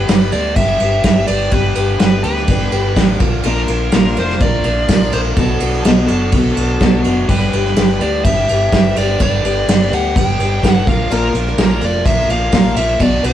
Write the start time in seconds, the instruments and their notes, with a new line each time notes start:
Already playing: overdriven electric guitar G2, lead electric guitar B4
0.07 fingered electric bass G1, overdriven electric guitar G3 B3 D4 G4, steel-string acoustic guitar B4, snare, ride
0.32 fingered electric bass D2, overdriven electric guitar G2 D3 G3 B3 D4 G4, steel-string acoustic guitar B4, lead electric guitar D5, ride
0.56 fingered electric bass G1, overdriven electric guitar G3 B3 D4 G4, steel-string acoustic guitar B4, lead electric guitar E5, kick, ride
0.80 fingered electric bass G1, overdriven electric guitar G3 B3 D4 G4, steel-string acoustic guitar B4, ride
1.03 fingered electric bass G1, overdriven electric guitar G2 D3 G3 B3 D4 G4, steel-string acoustic guitar B4, kick, snare, ride
1.27 fingered electric bass G1, overdriven electric guitar B3 D4 G4, steel-string acoustic guitar B4, lead electric guitar D5, ride
1.31 overdriven electric guitar G3
1.51 fingered electric bass G1, overdriven electric guitar G2 D3 G3 B3 D4 G4, lead electric guitar B4, steel-string acoustic guitar B4, kick, ride
1.75 fingered electric bass G1, overdriven electric guitar G3 B3 D4 G4, steel-string acoustic guitar B4, ride
1.99 fingered electric bass G1, overdriven electric guitar G3 B3 D4 G4, lead electric guitar B4, steel-string acoustic guitar B4, snare, ride
2.23 fingered electric bass D2, overdriven electric guitar G2 D3 G3 B3 D4 G4, lead electric guitar B4, steel-string acoustic guitar B4, ride
2.37 snare
2.48 fingered electric bass G1, overdriven electric guitar G3 B3 D4 G4, kick, ride
2.52 steel-string acoustic guitar B4
2.72 fingered electric bass G1, overdriven electric guitar G3 B3 D4 G4, steel-string acoustic guitar B4, ride
2.96 fingered electric bass A1, overdriven electric guitar G2 D3 G3 B3 D4 G4, steel-string acoustic guitar B4, kick, snare, ride
3.19 fingered electric bass A#1, overdriven electric guitar A#2 D3 A#3 D4 F4, steel-string acoustic guitar A#4, kick, ride
3.43 fingered electric bass A#1, overdriven electric guitar A#2 D3 A#3 D4 F4, steel-string acoustic guitar F3, lead electric guitar A#4, ride
3.47 steel-string acoustic guitar A#4
3.67 fingered electric bass A#1, overdriven electric guitar A#3 D4 F4, steel-string acoustic guitar A#4, ride
3.92 fingered electric bass A#1, steel-string acoustic guitar A#2 F3 A#4, overdriven electric guitar D3 A#3 D4 F4, lead electric guitar A#4, snare, ride
4.15 fingered electric bass F1, overdriven electric guitar A#2 D3 A#3 D4 F4, steel-string acoustic guitar A#4, ride
4.20 lead electric guitar C5
4.30 snare
4.39 fingered electric bass A#1, overdriven electric guitar D3 A#3 D4 F4, steel-string acoustic guitar A#4, lead electric guitar D5, kick, ride
4.63 fingered electric bass A#1, overdriven electric guitar A#3 D4 F4, steel-string acoustic guitar A#4, ride
4.87 fingered electric bass A#1, overdriven electric guitar A#2 D3 A#3 D4 F4, steel-string acoustic guitar F3, kick, snare, ride
4.92 steel-string acoustic guitar A#4
5.11 fingered electric bass A#1, overdriven electric guitar A#3 D4 F4, steel-string acoustic guitar A#4, lead electric guitar C5, ride
5.35 fingered electric bass B1, overdriven electric guitar B2 F#3 B3 D4 F#4, lead electric guitar A4, kick, ride
5.40 steel-string acoustic guitar B4
5.60 fingered electric bass B1, overdriven electric guitar B3 D4 F#4, steel-string acoustic guitar B4, ride
5.73 snare
5.84 fingered electric bass B1, steel-string acoustic guitar B2, overdriven electric guitar F#3 B3 D4 F#4, lead electric guitar A4, snare, ride
5.88 steel-string acoustic guitar B4
6.07 fingered electric bass F#1, overdriven electric guitar F#3 B3 D4 F#4, lead electric guitar A4, steel-string acoustic guitar B4, ride
6.11 overdriven electric guitar B2
6.32 fingered electric bass B1, overdriven electric guitar F#3 B3 D4 F#4, kick, ride
6.37 steel-string acoustic guitar B4
6.56 fingered electric bass B1, overdriven electric guitar B3 D4 F#4, steel-string acoustic guitar B4, ride
6.79 fingered electric bass B1, overdriven electric guitar B2 F#3 B3 D4 F#4, kick, snare, ride
6.84 steel-string acoustic guitar B4
7.03 fingered electric bass F#1, overdriven electric guitar B3 D4 F#4, steel-string acoustic guitar B4, ride
7.28 fingered electric bass G1, overdriven electric guitar G2 D3 G3 B3 D4 G4, lead electric guitar B4, kick, crash
7.32 steel-string acoustic guitar B4
7.51 fingered electric bass G1, overdriven electric guitar G3 B3 D4 G4, steel-string acoustic guitar B4, ride
7.56 steel-string acoustic guitar D4
7.66 snare
7.75 fingered electric bass G1, overdriven electric guitar G3 B3 D4 G4, steel-string acoustic guitar B4, snare, ride
7.99 fingered electric bass D2, overdriven electric guitar G2 D3 G3 B3 D4 G4, steel-string acoustic guitar B4, lead electric guitar D5, ride
8.24 fingered electric bass G1, overdriven electric guitar G3 B3 D4 G4, steel-string acoustic guitar B4, lead electric guitar E5, kick, ride
8.48 fingered electric bass G1, overdriven electric guitar G3 B3 D4 G4, steel-string acoustic guitar B4, ride
8.72 fingered electric bass G1, overdriven electric guitar G2 D3 G3 B3 D4 G4, steel-string acoustic guitar B4, kick, snare, ride
8.95 fingered electric bass G1, overdriven electric guitar G3 B3 D4 G4, steel-string acoustic guitar B4, lead electric guitar D5, ride
8.99 steel-string acoustic guitar D4 G4
9.19 fingered electric bass G1, overdriven electric guitar G2 D3 G3 B3 D4 G4, steel-string acoustic guitar B4, lead electric guitar D5, kick, ride
9.43 fingered electric bass G1, overdriven electric guitar G3 B3 D4 G4, steel-string acoustic guitar B4, ride
9.67 fingered electric bass G1, overdriven electric guitar G3 B3 D4 G4, steel-string acoustic guitar B4, snare, ride
9.90 fingered electric bass D2, overdriven electric guitar G2 D3 G3 B3 D4 G4, steel-string acoustic guitar B4, lead electric guitar F#5, ride
10.14 fingered electric bass G1, overdriven electric guitar G3 B3 D4 G4, steel-string acoustic guitar B4, kick, ride
10.18 lead electric guitar G5
10.39 fingered electric bass G1, overdriven electric guitar G3 B3 D4 G4, steel-string acoustic guitar B4, ride
10.63 fingered electric bass G1, overdriven electric guitar G2 D3 G3 B3 D4 G4, steel-string acoustic guitar B4, kick, snare, ride
10.68 lead electric guitar F#5
10.86 fingered electric bass A#1, overdriven electric guitar A#2 F3 A#3 D4 F4, steel-string acoustic guitar A#4, lead electric guitar F5, kick, ride
11.11 fingered electric bass A#1, overdriven electric guitar A#2 F3 A#3 D4 F4, steel-string acoustic guitar A#4, lead electric guitar A#4, ride
11.33 fingered electric bass A#1, overdriven electric guitar A#3 D4 F4, steel-string acoustic guitar A#4, ride
11.47 snare
11.58 fingered electric bass A#1, steel-string acoustic guitar A#2 A#4, overdriven electric guitar F3 A#3 D4 F4, snare, ride
11.80 fingered electric bass F1, overdriven electric guitar F3 A#3 D4 F4, steel-string acoustic guitar A#4, ride
11.85 overdriven electric guitar A#2, lead electric guitar D5
12.05 fingered electric bass A#1, overdriven electric guitar F3 A#3 D4 F4, steel-string acoustic guitar A#4, lead electric guitar E5, kick, ride
12.28 fingered electric bass A#1, overdriven electric guitar A#3 D4 F4, steel-string acoustic guitar A#4, lead electric guitar F5, ride
12.52 fingered electric bass A#1, overdriven electric guitar A#2 F3 A#3 D4 F4, steel-string acoustic guitar A#4, kick, snare, ride
12.76 fingered electric bass A#1, overdriven electric guitar A#3 D4 F4, steel-string acoustic guitar A#4, lead electric guitar E5, ride
13.00 fingered electric bass B1, overdriven electric guitar B2 F#3 B3 D4 F#4, steel-string acoustic guitar B4, lead electric guitar D5, kick, ride
13.23 fingered electric bass B1, overdriven electric guitar B3 D4 F#4, steel-string acoustic guitar B4, lead electric guitar C#5, ride